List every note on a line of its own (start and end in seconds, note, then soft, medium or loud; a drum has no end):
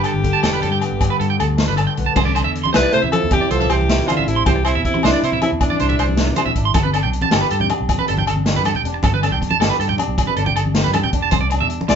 0.00 0.62 G2 medium
0.00 0.22 D3 medium
0.00 0.43 D4 medium
0.00 1.78 G4 medium
0.00 low agogo medium
0.04 0.11 A4 medium
0.04 closed hi-hat soft
0.14 0.31 G1 medium
0.23 1.38 D3 soft
0.23 kick medium
0.23 closed hi-hat soft
0.33 0.39 A5 medium
0.43 0.65 E1 medium
0.43 1.58 D4 medium
0.43 0.49 A4 medium
0.43 snare medium
0.43 closed hi-hat medium
0.43 low agogo medium
0.53 0.59 B4 medium
0.62 0.99 G2 medium
0.62 0.80 G2 medium
0.62 0.68 A4 medium
0.62 closed hi-hat soft
0.72 0.77 G5 medium
0.81 1.97 B3 medium
0.81 closed hi-hat soft
0.81 low agogo medium
0.92 1.09 G1 medium
1.00 1.77 G2 medium
1.00 kick medium
1.00 closed hi-hat medium
1.00 low agogo medium
1.10 1.16 B4 medium
1.20 1.37 G2 medium
1.20 1.25 A4 medium
1.20 closed hi-hat soft
1.30 1.35 G5 medium
1.39 1.65 D2 medium
1.39 2.73 D3 medium
1.39 1.45 A4 medium
1.39 closed hi-hat soft
1.39 low agogo medium
1.58 2.14 D4 medium
1.58 snare medium
1.58 closed hi-hat medium
1.68 1.86 G1 medium
1.68 1.73 B4 medium
1.77 2.14 G2 medium
1.77 1.83 A4 medium
1.77 closed hi-hat soft
1.77 low agogo medium
1.87 1.92 G5 medium
1.97 2.06 B1 medium
1.97 2.14 B3 soft
1.97 closed hi-hat soft
2.06 2.12 A5 medium
2.16 2.41 C2 medium
2.16 2.51 C3 medium
2.16 2.21 C5 medium
2.16 kick medium
2.16 crash medium
2.16 muted conga medium
2.16 low agogo medium
2.25 2.31 D5 medium
2.25 high conga medium
2.35 3.13 D4 medium
2.35 2.40 C5 medium
2.35 closed hi-hat soft
2.35 low conga soft
2.35 low agogo medium
2.44 2.63 E2 medium
2.44 2.50 E5 medium
2.55 closed hi-hat soft
2.64 2.69 C6 medium
2.64 muted conga medium
2.64 high conga medium
2.73 2.83 C2 medium
2.73 3.08 E3 medium
2.73 2.92 G3 medium
2.73 3.88 E4 medium
2.73 2.92 B4 loud
2.73 2.78 C5 medium
2.73 snare medium
2.73 closed hi-hat medium
2.73 low agogo medium
2.83 2.88 D5 medium
2.92 3.11 C3 medium
2.92 3.01 A3 medium
2.92 2.98 C5 medium
2.92 3.02 C5 medium
2.92 closed hi-hat soft
3.02 3.07 E5 medium
3.02 high conga medium
3.02 low conga medium
3.11 3.29 F3 medium
3.11 3.50 D4 medium
3.11 3.30 A4 medium
3.11 closed hi-hat medium
3.11 muted conga medium
3.11 low agogo medium
3.24 3.40 E2 medium
3.24 low conga soft
3.31 3.66 C3 medium
3.31 3.52 E3 medium
3.31 3.52 G4 loud
3.31 kick medium
3.31 closed hi-hat medium
3.31 low conga soft
3.31 low agogo medium
3.41 3.46 D5 medium
3.41 high conga medium
3.50 3.67 C2 medium
3.50 3.72 F3 medium
3.50 3.61 B3 medium
3.50 3.72 A4 medium
3.50 3.56 C5 medium
3.50 closed hi-hat medium
3.60 4.27 D4 soft
3.60 3.66 E5 medium
3.60 muted conga medium
3.60 low conga medium
3.70 4.00 C2 medium
3.70 4.10 E3 medium
3.70 4.09 G4 loud
3.70 3.75 C5 medium
3.70 closed hi-hat soft
3.70 low agogo medium
3.81 high conga medium
3.81 low conga soft
3.89 4.23 E3 medium
3.89 5.03 E4 medium
3.89 snare medium
3.89 closed hi-hat medium
3.98 4.15 C3 medium
4.07 4.29 D3 medium
4.07 4.30 F4 medium
4.07 4.13 C5 medium
4.07 closed hi-hat soft
4.07 muted conga medium
4.07 low agogo medium
4.17 4.22 E5 medium
4.17 high conga medium
4.17 low conga medium
4.27 4.44 A1 medium
4.27 4.47 C3 medium
4.27 4.49 D4 soft
4.27 4.46 E4 medium
4.27 closed hi-hat soft
4.36 4.42 C6 medium
4.46 4.72 C2 medium
4.46 4.81 C3 medium
4.46 4.65 E3 medium
4.46 4.64 G4 medium
4.46 4.52 C5 medium
4.46 kick medium
4.46 closed hi-hat medium
4.46 muted conga medium
4.46 low agogo medium
4.56 muted clean electric guitar stroke medium
4.56 high conga medium
4.65 4.84 C3 medium
4.65 4.83 E4 medium
4.65 4.70 C5 medium
4.65 closed hi-hat soft
4.65 low agogo medium
4.75 4.92 E2 medium
4.75 4.80 E5 medium
4.75 low conga medium
4.84 5.05 C3 medium
4.84 5.05 E4 medium
4.84 kick medium
4.84 closed hi-hat soft
4.94 muted clean electric guitar stroke medium
4.94 muted conga medium
4.94 high conga medium
5.03 5.12 C2 medium
5.03 5.26 G2 medium
5.03 5.38 E3 medium
5.03 5.26 D4 medium
5.03 6.18 E4 medium
5.03 5.09 C5 medium
5.03 snare medium
5.03 closed hi-hat medium
5.03 low agogo medium
5.13 5.19 D5 medium
5.23 5.40 C3 medium
5.23 5.42 C3 medium
5.23 5.42 E4 medium
5.23 5.29 C5 medium
5.23 closed hi-hat soft
5.32 5.38 E5 medium
5.32 high conga medium
5.32 low conga medium
5.42 5.51 C3 medium
5.42 5.80 D4 medium
5.42 5.51 E4 medium
5.42 closed hi-hat soft
5.42 muted conga medium
5.42 low agogo medium
5.52 5.69 E2 medium
5.52 low conga soft
5.61 6.53 G2 medium
5.61 5.95 C3 medium
5.61 6.53 D4 medium
5.61 kick medium
5.61 closed hi-hat medium
5.61 low conga soft
5.61 low agogo medium
5.70 5.75 D5 medium
5.70 high conga medium
5.79 5.97 C2 medium
5.79 6.57 D4 medium
5.79 5.85 C5 medium
5.79 closed hi-hat soft
5.89 5.95 E5 medium
5.89 muted conga medium
5.89 low conga medium
5.99 6.30 C2 medium
5.99 6.04 C5 medium
5.99 closed hi-hat soft
5.99 low agogo medium
6.09 high conga medium
6.09 low conga soft
6.17 6.53 E3 medium
6.17 6.76 E4 medium
6.17 snare medium
6.17 closed hi-hat medium
6.17 low conga soft
6.27 6.45 C3 medium
6.27 muted clean electric guitar stroke medium
6.36 6.42 C5 medium
6.36 closed hi-hat soft
6.36 muted conga medium
6.36 low agogo medium
6.46 6.51 E5 medium
6.46 high conga medium
6.46 low conga medium
6.55 6.73 G#1 medium
6.55 6.94 D4 medium
6.55 kick medium
6.55 closed hi-hat medium
6.65 6.71 C6 medium
6.74 7.01 G1 medium
6.74 7.10 G2 medium
6.74 6.80 A4 medium
6.74 kick medium
6.74 closed hi-hat medium
6.74 muted conga loud
6.74 low agogo medium
6.83 6.89 B4 medium
6.83 high conga medium
6.93 7.70 D4 medium
6.93 6.99 A4 medium
6.93 closed hi-hat soft
6.93 low conga soft
6.93 low agogo medium
7.03 7.21 B1 medium
7.03 7.08 G5 medium
7.03 low conga medium
7.13 closed hi-hat soft
7.22 7.28 A5 medium
7.22 muted conga medium
7.22 high conga medium
7.31 7.41 G1 medium
7.31 7.66 D3 medium
7.31 8.47 G4 medium
7.31 7.38 A4 medium
7.31 snare medium
7.31 closed hi-hat medium
7.31 low agogo medium
7.41 7.47 B4 medium
7.50 7.68 G2 medium
7.50 7.57 A4 medium
7.50 closed hi-hat soft
7.60 7.66 G5 medium
7.60 high conga medium
7.60 low conga medium
7.69 8.09 D4 medium
7.69 closed hi-hat soft
7.69 muted conga medium
7.69 low agogo medium
7.79 7.97 B1 medium
7.79 low conga soft
7.89 8.24 G2 medium
7.89 kick medium
7.89 closed hi-hat medium
7.89 low agogo medium
7.98 8.04 B4 medium
7.98 high conga medium
8.08 8.26 G1 medium
8.08 8.85 D4 medium
8.08 8.14 A4 medium
8.08 closed hi-hat soft
8.17 8.24 G5 medium
8.17 muted conga medium
8.17 low conga medium
8.27 8.58 G1 medium
8.27 8.33 A4 medium
8.27 closed hi-hat soft
8.27 low agogo medium
8.36 high conga medium
8.36 low conga soft
8.45 8.81 D3 medium
8.45 9.61 G4 medium
8.45 snare medium
8.45 closed hi-hat medium
8.45 low conga soft
8.56 8.73 G2 medium
8.56 8.62 B4 medium
8.65 8.71 A4 medium
8.65 closed hi-hat soft
8.65 muted conga medium
8.65 low agogo medium
8.75 8.81 G5 medium
8.75 high conga medium
8.75 low conga medium
8.84 9.01 E1 medium
8.84 9.23 D4 medium
8.84 closed hi-hat soft
8.94 muted clean electric guitar stroke medium
9.03 9.29 G1 medium
9.03 9.38 G2 medium
9.03 9.09 A4 medium
9.03 kick medium
9.03 closed hi-hat medium
9.03 muted conga medium
9.03 low agogo medium
9.13 9.19 B4 medium
9.13 high conga medium
9.13 low conga soft
9.23 9.99 D4 medium
9.23 9.28 A4 medium
9.23 closed hi-hat soft
9.23 low agogo medium
9.31 9.49 B1 medium
9.31 9.38 G5 medium
9.31 low conga medium
9.41 kick medium
9.41 closed hi-hat soft
9.41 low conga soft
9.51 9.56 A5 medium
9.51 muted conga medium
9.51 high conga medium
9.51 low conga soft
9.60 9.69 G1 medium
9.60 9.95 D3 medium
9.60 10.76 G4 medium
9.60 9.66 A4 medium
9.60 snare medium
9.60 closed hi-hat medium
9.60 low conga soft
9.60 low agogo medium
9.70 9.75 B4 medium
9.79 9.97 G2 medium
9.79 9.85 A4 medium
9.79 closed hi-hat soft
9.89 9.95 G5 medium
9.89 high conga medium
9.89 low conga medium
9.98 10.38 D4 medium
9.98 closed hi-hat medium
9.98 muted conga medium
9.98 low agogo medium
10.08 10.25 B1 medium
10.18 10.53 G2 medium
10.18 kick medium
10.18 closed hi-hat medium
10.18 low agogo medium
10.27 10.33 B4 medium
10.27 high conga medium
10.27 low conga soft
10.36 10.54 G1 medium
10.36 11.14 D4 medium
10.36 10.42 A4 medium
10.36 closed hi-hat soft
10.46 10.52 G5 medium
10.46 muted conga medium
10.46 low conga medium
10.55 10.87 G1 medium
10.55 10.61 A4 medium
10.55 closed hi-hat soft
10.55 low conga soft
10.55 low agogo medium
10.65 high conga medium
10.75 11.10 D3 medium
10.75 11.90 G4 medium
10.75 snare medium
10.75 closed hi-hat medium
10.84 11.02 G2 medium
10.84 10.90 B4 medium
10.93 10.99 A4 medium
10.93 closed hi-hat medium
10.93 muted conga medium
10.93 low conga soft
10.93 low agogo medium
11.04 11.09 G5 medium
11.04 high conga medium
11.04 low conga medium
11.13 11.30 E1 medium
11.13 11.35 D4 soft
11.13 kick medium
11.13 closed hi-hat medium
11.23 11.28 A5 medium
11.23 low conga soft
11.31 11.57 C2 medium
11.31 11.67 C3 medium
11.31 11.37 C5 medium
11.31 kick medium
11.31 closed hi-hat medium
11.31 muted conga medium
11.31 low agogo medium
11.41 11.46 D5 medium
11.41 high conga medium
11.50 11.95 D4 medium
11.50 muted clean electric guitar stroke medium
11.50 closed hi-hat soft
11.50 low conga soft
11.50 low agogo medium
11.60 11.78 E2 medium
11.60 11.66 E5 medium
11.60 low conga medium
11.70 closed hi-hat soft
11.81 muted conga medium
11.81 high conga medium
11.88 11.95 C2 medium
11.88 11.95 E3 medium
11.88 11.95 G3 medium
11.88 11.95 E4 medium
11.88 11.95 D5 medium
11.88 muted clean electric guitar stroke medium
11.88 snare medium
11.88 closed hi-hat medium
11.88 low agogo medium